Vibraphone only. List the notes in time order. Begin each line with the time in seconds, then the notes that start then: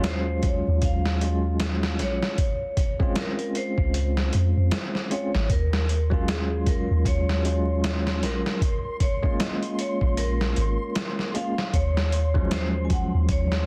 0.08 C5
0.47 C#5
0.85 F5
2.02 C#5
3.19 A#4
3.57 C5
5.13 C#5
5.51 A#4
6.30 G#4
6.68 A#4
7.07 C#5
8.25 A#4
9.02 C#5
9.40 D#5
9.80 C#5
10.18 A#4
11.37 F5
11.75 C#5
12.53 C5
12.85 G#5
12.93 F#5
13.32 C#5